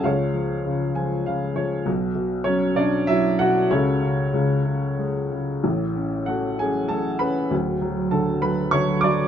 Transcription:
X:1
M:3/4
L:1/8
Q:1/4=99
K:C#phr
V:1 name="Upright piano"
[^EGc^e]4 z2 | z2 [Cc] [Dd] [Ee] [Ff] | [CFAc]4 z2 | z2 [Ff] [Gg] [Aa] [Bb] |
z2 [Aa] [Bb] [cc'] [dd'] |]
V:2 name="Upright piano" clef=bass
C,, ^E, C, [E,g] [C,^e] [E,c] | [B,,,B,,] B,, F, B,, F, B,, | [C,,C,] C, [C,,C,] C, G, C, | [A,,,A,,] C A, C A, C |
[D,,,D,,] F, D, F, D, F, |]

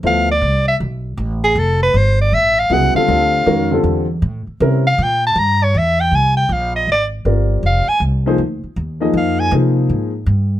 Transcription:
X:1
M:4/4
L:1/8
Q:"Swing" 1/4=158
K:C
V:1 name="Soprano saxophone"
f d2 e z3 ^G | A B c d e f ^f =f- | f4 z4 | z f g a _b _d e g |
[K:Fdor] a g f e d z3 | f a z6 | f a z6 |]
V:2 name="Grand piano"
[F,B,EAc] z6 z | z6 [^C,^F,B,E^G] [D,=G,=C=FA] | [D,G,CFA]2 [_E,^G,^C^F_B] [D,=G,=C=FA]2 z3 | [G,C_DE_B] z6 z |
[K:Fdor] z6 [G,CFBd]2- | [G,CFBd] z2 [F,B,EAc] z3 [F,B,EAe]- | [F,B,EAe]2 [F,B,EAc]3 z3 |]
V:3 name="Upright bass" clef=bass
D,,2 C,,2 B,,,2 A,,,2 | F,,,2 G,,,2 A,,,2 C,, z | D,,2 F,,2 E,,2 A,, z | C,2 _B,,2 G,,2 E,,2 |
[K:Fdor] C,,2 B,,,2 A,,,2 G,,,2 | F,,, z C,,2 D,, z E,,2 | F,,2 C,2 A,,2 G,,2 |]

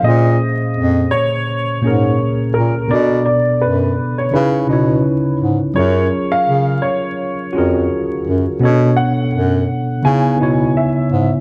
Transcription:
X:1
M:4/4
L:1/16
Q:"Swing 16ths" 1/4=84
K:Gblyd
V:1 name="Upright piano"
e6 d8 B2 | =d2 d2 =B3 _d _c6 z2 | d3 f3 d8 z2 | z2 ^f6 a4 _f3 z |]
V:2 name="Tine electric piano"
[B,,B,DAc]4 z6 [B,,B,DAB]4 z2 | [=B,,=B,=D=A=d]4 z4 [_D,_DE_F_c]2 [D,DEF_d]4 z2 | [G,DFAB]4 z6 [DFGAB]4 z2 | [=B,,=B,D=D=A_d]4 z4 [D,_CE_Fd]2 [D,CEFd]4 z2 |]
V:3 name="Bass clarinet" clef=bass
B,,2 z2 F,,2 z4 A,,2 z2 B,, z | =B,,2 z2 ^F,,2 z2 D,2 _C,2 z2 A,, z | G,,2 z2 D,2 z4 F,,2 z2 G,, z | =B,,2 z2 ^F,,2 z2 D,2 _C,2 z2 A,, z |]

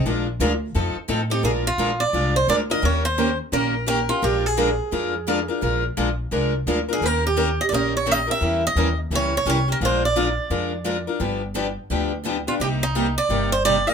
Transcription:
X:1
M:4/4
L:1/16
Q:"Swing" 1/4=172
K:Bbmix
V:1 name="Steel-string acoustic guitar"
z12 z2 G2 | A2 F4 d4 c2 d2 e2 | _d2 c4 z2 B4 B2 F2 | G2 A12- A2- |
A2 z12 A2 | B2 G4 e3/2 d/2 e2 _d2 e2 =e2- | =e2 _e4 z2 ^c2 c2 c2 B2 | c2 d12- d2- |
d2 z12 F2 | G2 E4 d4 c2 d2 e2 |]
V:2 name="Steel-string acoustic guitar"
[F,A,DFB]2 z2 [F,A,DFB] z3 [F,CE=A]2 z2 [F,CEA] z [CEA]2 | [F,A,DFB]2 z2 [F,A,DFB] z3 [F,A,DFB]2 z2 [F,A,DFB] z [DFB]2 | [E,B,_DGB]2 z2 [E,B,DGB] z3 [E,B,DGB]2 z2 [E,B,DGB] z [DGB]2 | [F,A,DFB]2 z2 [F,A,DFB] z3 [F,A,DFB]2 z2 [F,A,DFB] z [DFB]2 |
[F,A,DFB]2 z2 [F,A,DFB] z3 [F,A,DFB]2 z2 [F,A,DFB] z [DFB]2 | [E,B,_DGB]2 z2 [E,B,DGB] z3 [E,B,DGB]2 z2 [E,B,DGB] z [DGB]2 | [=E,B,^CG]2 z2 [E,B,CG] z3 [E,B,CG]2 z2 [E,B,CG] z [B,CG]2 | [F,A,DFB]2 z2 [F,A,DFB] z3 [F,A,DFB]2 z2 [F,A,DFB] z [DFB]2 |
[D,F,=B,DG]2 z2 [D,F,B,DG] z3 [D,F,B,DG]2 z2 [D,F,B,DG] z [B,DG]2 | [C,G,B,EG]2 z2 [C,G,B,EG] z3 [C,G,B,EG]2 z2 [C,G,B,EG] z [B,EG]2 |]
V:3 name="Steel-string acoustic guitar"
[F,A,DFB]2 z2 [F,A,DFB] z3 [F,CE=A]2 z2 [F,CEA] z3 | [F,A,DFB]2 z2 [F,A,DFB] z3 [F,A,DFB]2 z2 [F,A,DFB] z3 | [E,B,_DGB]2 z2 [E,B,DGB] z3 [E,B,DGB]2 z2 [E,B,DGB] z3 | [F,A,DFB]2 z2 [F,A,DFB] z3 [F,A,DFB]2 z2 [F,A,DFB] z3 |
[F,A,DFB]2 z2 [F,A,DFB] z3 [F,A,DFB]2 z2 [F,A,DFB] z3 | [E,B,_DGB]2 z2 [E,B,DGB] z3 [E,B,DGB]2 z2 [E,B,DGB] z3 | [=E,G,^C=EB]2 z2 [E,G,CEB] z3 [E,G,CEB]2 z2 [E,G,CEB] z3 | [F,A,DFB]2 z2 [F,A,DFB] z3 [F,A,DFB]2 z2 [F,A,DFB] z3 |
[D,F,=B,DG]2 z2 [D,F,B,DG] z3 [D,F,B,DG]2 z2 [D,F,B,DG] z3 | [C,G,B,EG]2 z2 [C,G,B,EG] z3 [C,G,B,EG]2 z2 [C,G,B,EG] z3 |]
V:4 name="Upright bass" clef=bass
B,,,4 D,,4 F,,2 z2 =A,,4 | B,,,4 B,,,4 C,,4 D,,4 | E,,8 B,,,8 | B,,,8 F,,8 |
B,,,4 B,,,4 C,,4 D,,4 | E,,8 B,,,8 | =E,,4 _E,,4 ^C,,4 =C,,4 | B,,,8 F,,8 |
G,,,8 D,,8 | C,,8 G,,,8 |]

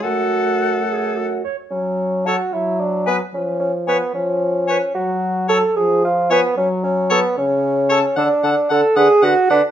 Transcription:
X:1
M:6/8
L:1/16
Q:3/8=74
K:F#m
V:1 name="Flute"
f8- f2 z2 | z4 a z4 z g z | z4 g z4 z g z | z4 a z4 z g z |
z4 a z4 z a z | [K:Dlyd] a2 a2 a2 f2 f2 f2 |]
V:2 name="Oboe"
A8- A z3 | z4 c z4 z B z | z4 c z4 z c z | z4 c z4 z c z |
z4 c z4 z c z | [K:Dlyd] f2 f2 f2 f2 f2 f2 |]
V:3 name="Clarinet"
F6 G2 F2 c2 | z4 A z4 z B z | z4 B z4 z B z | z4 A z4 z B z |
z4 A z4 z A z | [K:Dlyd] A2 A2 A2 B2 B2 B2 |]
V:4 name="Bassoon"
F,,8- F,,2 z2 | C4 F2 E2 D2 B,2 | C2 C2 B,2 C6 | F4 A2 G2 ^E2 B,2 |
C2 C2 B,2 C6 | [K:Dlyd] D4 A2 G2 F2 D2 |]
V:5 name="French horn" clef=bass
A,8- A,2 z2 | F,6 F,6 | ^E,6 E,6 | F,6 ^E,6 |
F,6 C,6 | [K:Dlyd] D,2 D,2 D,2 D,2 D,2 D,2 |]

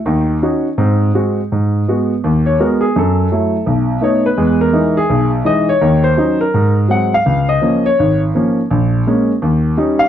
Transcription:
X:1
M:4/4
L:1/8
Q:"Swing" 1/4=167
K:G#phr
V:1 name="Grand piano"
z8 | [K:G#m] z4 z c A G | =A4 z2 c B- | B A2 G2 z d c- |
c ^B2 A2 z f ^e- | ^e d2 c2 z3 | z6 z ^e |]
V:2 name="Grand piano" clef=bass
[D,,D,]2 [CDF] z [G,,^B,]2 [G,B,F] z | [K:G#m] G,,2 [G,B,F] z D,,2 [G,B,F] z | F,,2 [F,=A,E] z B,,,2 [A,B,D] z | [E,,G,]2 [E,G,D] z B,,,2 [E,G,D] z |
[D,,D,]2 [F,CD] z G,,2 [F,G,^B,] z | C,,2 [^E,A,C] z G,,,2 [E,A,C] z | A,,,2 [G,A,C] z D,,2 [=G,CD] z |]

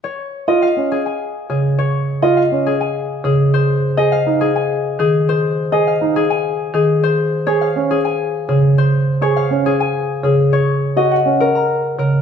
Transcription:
X:1
M:3/4
L:1/16
Q:1/4=103
K:Db
V:1 name="Harp"
d3 e f2 A a3 A2 | d3 e f2 A a3 A2 | c3 e f2 A a3 A2 | c3 e f2 A a3 A2 |
c3 d f2 A a3 A2 | c3 d f2 A a3 A2 | d3 e g2 B b3 B2 |]
V:2 name="Grand piano"
z3 F z D z6 | z3 F z D z6 | z3 A z E z6 | z3 A z E z6 |
z3 A z D z6 | z3 A z D z6 | z3 G z D z6 |]
V:3 name="Marimba" clef=bass
z8 z2 D, z | z8 z2 D, z | z8 z2 E, z | z8 z2 E, z |
z8 z2 D, z | z8 z2 D, z | z8 z2 D, z |]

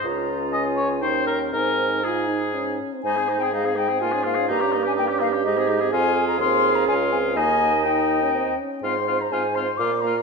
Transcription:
X:1
M:3/4
L:1/16
Q:1/4=124
K:Ab
V:1 name="Flute"
b4 a4 g4 | a4 a6 z2 | a3 g f2 g2 a2 f2 | b3 a g2 f2 e4 |
a3 b c'3 b a2 a2 | a4 g6 z2 | [K:Fdor] c'3 b a2 c'2 d'2 b2 |]
V:2 name="Clarinet"
F8 E4 | E4 E6 z2 | c4 A4 F4 | G12 |
A12 | e8- e2 z2 | [K:Fdor] c12 |]
V:3 name="Oboe"
z4 e2 d2 c2 B2 | B4 A6 z2 | E A E A E A E A F A F A | E G E G E G E G E A E A |
F4 F4 F4 | E4 E6 z2 | [K:Fdor] F2 F2 F2 F2 F2 F2 |]
V:4 name="French horn"
D8 D4 | C4 F2 E2 D3 C | A, C A, C A, C A, C B, D B, D | B, D B, D B, D B, D A, C A, C |
C4 C4 D2 C2 | B,4 E3 D C2 D2 | [K:Fdor] C2 C2 C2 C2 B,2 B,2 |]
V:5 name="Bassoon" clef=bass
D,,8 E,,4 | A,,8- A,,2 z2 | A,,12 | G,,8 A,,4 |
F,,4 E,,4 D,,4 | E,,8- E,,2 z2 | [K:Fdor] A,,4 A,,4 B,,4 |]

